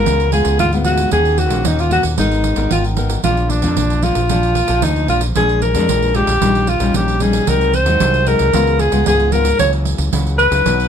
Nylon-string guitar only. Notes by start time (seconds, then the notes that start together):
Already playing: G#3 B3 F4
0.07 C#3
0.33 G#3 B3 F4
0.60 G#2
0.73 G#3 B3 F4
1.12 D#3 A#3 C#4 F#4
1.51 A#3 C#4 F#4
1.66 A#2
1.91 A#3 C#4 F#4
2.18 G#3 B3 D#4 A#4
2.57 B3 D#4 A#4
2.71 D#3
2.97 B3 D#4 A#4
3.24 A#2 F3 A#3 D4
3.63 F3 A#3 D4
3.77 F2
4.03 F3 A#3 D4
4.30 A#2 F3 A#3 D4
4.69 F3 A#3 D4
4.83 F2
5.09 F3 A#3 D4
5.36 A#2 F3 G#3 D4
5.75 F3 G#3 D4
5.89 F2
6.15 F3 G#3 D4
6.42 A#2 G3 C#4 D#4
6.80 G3 C#4 D#4
6.95 A#2
7.21 G3 C#4 D#4
7.48 C3 F#3 G#3 D#4
7.86 F#3 G#3 D#4
8.01 C3
8.27 F#3 G#3 D#4
8.54 C#3 G#3 B3 F4
8.92 G#3 B3 F4
9.07 G#2
9.33 G#3 B3 F4
9.60 C#3 F#3 A#3 E4
10.13 C#3 F#3 A#3 E4
10.52 F#3 D#4
10.66 B2